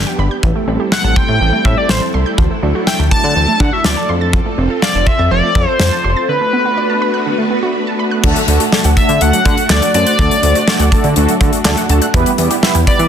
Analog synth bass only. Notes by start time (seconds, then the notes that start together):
0.19 G1
0.43 A1
0.68 A1
1.04 A1
1.29 A2
1.41 A1
1.65 A2
1.90 A1
2.14 C2
2.38 D2
2.63 D2
2.99 D2
3.24 D3
3.36 D2
3.60 D3
3.85 D2
4.09 F2
4.58 F1
4.95 F1
5.19 F2
5.31 F1
5.55 F2
5.80 F2
6.04 F1
8.24 D2
8.48 D2
8.85 D2
9.09 D3
9.21 D2
9.45 D3
9.70 D2
9.94 F#2
10.19 D2
10.43 D2
10.80 D2
11.04 D3
11.16 D2
11.41 D3
11.65 D2
11.90 D2
12.14 E2
12.38 E2
12.75 E2
12.99 E3